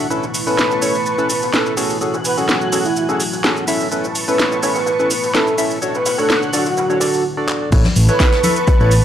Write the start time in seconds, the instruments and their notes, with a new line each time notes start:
Already playing: ambient pad D3 A3 B3 E4
0.10 synth stab C#4 E4 A4 B4, analog synth pad B4 A5 C#6, closed hi-hat, shaker
0.23 snare, shaker
0.34 closed hi-hat, open hi-hat, shaker
0.47 synth stab C#4 E4 A4 B4, soft synth lead B4, shaker
0.58 snare, closed hi-hat, shaker
0.70 snare, shaker
0.82 synth stab C#4 E4 A4 C#5, open hi-hat, shaker
0.94 soft synth lead B4, shaker
1.06 closed hi-hat, shaker
1.18 synth stab C#4 E4 A4 B4, shaker
1.29 closed hi-hat, open hi-hat, shaker
1.42 snare, shaker
1.52 synth stab C#4 E4 A4 B4, soft synth lead A4, snare, closed hi-hat, shaker
1.66 shaker
1.77 ambient pad F#3, synth stab C#4 F#4 G#4 A4, analog synth pad F#4 G#5 F#6, snare, closed hi-hat, open hi-hat, shaker
1.90 shaker
2.01 synth stab C#4 F#4 G#4 A4, open hi-hat, shaker
2.14 snare, shaker
2.25 soft synth lead B4, closed hi-hat, open hi-hat, shaker
2.37 synth stab C#4 F#4 G#4 A4, soft synth lead F#4, shaker
2.49 snare, shaker
2.61 shaker
2.72 synth stab C#4 F#4 G#4 A4, snare, open hi-hat, shaker
2.85 soft synth lead E4, shaker
2.96 soft synth lead E4, closed hi-hat, shaker
3.09 synth stab C#4 F#4 G#4 A4, snare, shaker
3.20 closed hi-hat, open hi-hat, shaker
3.32 snare, shaker
3.43 synth stab C#4 F#4 G#4 A4, snare, closed hi-hat, shaker
3.57 shaker
3.68 synth stab C#4 E4 A4 E5, analog synth pad B4 A5 C#6, open hi-hat, shaker
3.80 snare, shaker
3.92 synth stab C#4 E4 A4 B4, closed hi-hat, shaker
4.04 snare, shaker
4.15 closed hi-hat, open hi-hat, shaker
4.28 synth stab C#4 E4 A4 B4, soft synth lead B4, shaker
4.39 snare, shaker
4.52 snare, shaker
4.63 synth stab C#4 E4 A4 C#5, snare, open hi-hat, shaker
4.75 soft synth lead B4, snare, closed hi-hat, shaker
4.86 snare, closed hi-hat, shaker
4.99 synth stab C#4 E4 A4 B4, shaker
5.11 closed hi-hat, open hi-hat, shaker
5.23 snare, shaker
5.34 synth stab C#4 E4 A4 B4, soft synth lead A4, snare, shaker
5.47 shaker
5.58 synth stab C#4 E4 A4 E5, snare, open hi-hat, shaker
5.71 shaker
5.81 synth stab D4 F#4 A4 C#5, analog synth pad F#5 C#6 F#6, open hi-hat, shaker
5.94 soft synth lead B4, snare, shaker
6.06 snare, closed hi-hat, open hi-hat, shaker
6.18 synth stab D4 F#4 A4 C#5, soft synth lead A4, snare, closed hi-hat, shaker
6.30 snare, shaker
6.42 shaker
6.53 synth stab D4 F#4 A4 D5, soft synth lead F#4, snare, open hi-hat, shaker
6.66 soft synth lead F#4, snare, shaker
6.77 snare, closed hi-hat, shaker
6.90 synth stab D4 F#4 A4 C#5, snare, shaker
7.00 synth stab D4 F#4 A4 D5, snare, closed hi-hat, open hi-hat, shaker
7.14 snare, shaker
7.37 synth stab D4 F#4 A4 D5
7.49 clap
7.72 fingered electric bass A1, synth stab E4 A4 B4 C#5, ambient pad E4, analog synth pad B4 A5 C#6, kick, closed hi-hat, crash, tambourine, shaker
7.84 snare, closed hi-hat, tambourine, high conga, shaker
7.95 fingered electric bass A1, closed hi-hat, open hi-hat, tambourine, shaker
8.09 synth stab E4 A4 B4 C#5, soft synth lead B4, closed hi-hat, tambourine, shaker
8.20 kick, snare, closed hi-hat, tambourine, shaker
8.26 ambient pad A3
8.32 snare, closed hi-hat, tambourine, shaker
8.44 synth stab E4 A4 B4 E5, closed hi-hat, open hi-hat, tambourine, high conga, shaker
8.56 soft synth lead B4, closed hi-hat, tambourine, shaker
8.67 kick, closed hi-hat, tambourine, shaker
8.80 fingered electric bass A1, synth stab E4 A4 B4 C#5, tambourine, shaker
8.91 closed hi-hat, open hi-hat, tambourine, shaker